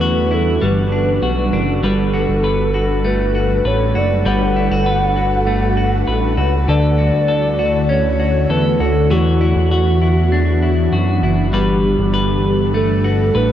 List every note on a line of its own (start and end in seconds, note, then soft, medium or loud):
0.00 0.58 E2 loud
0.00 0.61 E3 medium
0.00 0.68 E3 medium
0.00 0.61 G3 medium
0.00 0.61 B3 medium
0.00 1.81 D4 medium
0.00 0.30 E4 medium
0.00 1.79 F#4 medium
0.00 1.22 F#4 medium
0.00 0.35 B4 loud
0.31 0.68 E4 medium
0.31 0.63 A4 medium
0.62 1.20 G1 loud
0.62 1.83 G3 medium
0.62 1.82 G3 medium
0.62 1.82 A4 medium
0.62 1.82 B4 medium
0.62 1.50 B4 medium
0.92 1.53 D4 medium
1.22 1.51 B1 medium
1.22 1.84 F#4 medium
1.53 1.82 F#1 loud
1.53 2.13 D4 medium
1.83 2.26 G1 loud
1.83 6.64 G3 medium
1.83 4.24 G3 medium
1.83 6.64 D4 medium
1.83 9.06 F#4 medium
1.83 6.64 A4 medium
1.83 3.08 A4 medium
1.83 6.64 B4 medium
1.83 2.43 B4 medium
2.14 2.74 F#4 medium
2.29 3.61 G1 medium
2.44 3.64 B4 medium
2.74 3.35 F#4 medium
3.04 5.46 A3 medium
3.04 3.68 B4 medium
3.35 3.95 F#4 medium
3.65 3.94 A1 medium
3.65 4.25 B4 medium
3.65 3.99 C#5 loud
3.95 4.24 F#1 medium
3.95 4.56 F#4 medium
3.95 4.27 D5 loud
4.25 4.69 G1 loud
4.25 6.68 G3 medium
4.25 4.85 B4 medium
4.25 6.35 F#5 loud
4.56 4.71 E4 medium
4.71 6.04 G1 medium
4.71 5.15 F#4 medium
4.86 6.06 B4 medium
5.16 5.77 F#4 medium
5.47 7.89 A3 medium
5.77 6.37 F#4 medium
6.07 6.36 A1 medium
6.07 6.68 B4 medium
6.37 6.66 C#2 loud
6.37 6.98 F#4 medium
6.68 7.11 D2 loud
6.68 9.08 D3 medium
6.68 9.10 D3 medium
6.68 9.08 A3 medium
6.68 9.08 E4 medium
6.68 7.27 A4 medium
6.68 7.91 D5 loud
6.98 7.58 F#4 medium
7.13 8.46 D2 medium
7.28 8.49 A4 medium
7.59 8.19 F#4 medium
7.89 9.17 C#4 medium
7.89 8.52 C#5 loud
8.20 8.80 F#4 medium
8.50 8.79 E2 medium
8.50 9.11 A4 medium
8.50 8.80 B4 loud
8.80 9.09 D2 loud
8.80 9.11 F#4 medium
8.80 9.13 A4 loud
9.10 9.54 E2 loud
9.10 11.50 E3 medium
9.10 11.53 E3 medium
9.10 11.51 B3 medium
9.10 13.52 D4 medium
9.10 11.51 F#4 medium
9.10 9.71 F#4 medium
9.10 11.23 F#4 medium
9.41 10.00 E4 medium
9.56 10.88 E2 medium
9.71 10.92 F#4 medium
10.02 10.61 E4 medium
10.32 12.74 D4 medium
10.62 11.22 E4 medium
10.93 11.21 F#2 medium
10.93 11.53 F#4 medium
11.23 11.52 F#1 loud
11.23 11.59 E4 medium
11.53 11.96 G1 loud
11.53 13.52 G3 medium
11.53 12.72 G4 loud
11.53 13.52 A4 medium
11.53 13.52 B4 medium
11.53 12.12 B4 medium
11.99 13.31 G1 loud
12.14 13.34 B4 medium
12.74 13.52 A3 medium
12.74 13.38 A4 medium
13.04 13.52 F#4 medium
13.35 13.52 A1 medium
13.35 13.52 B4 medium
13.35 13.52 B4 loud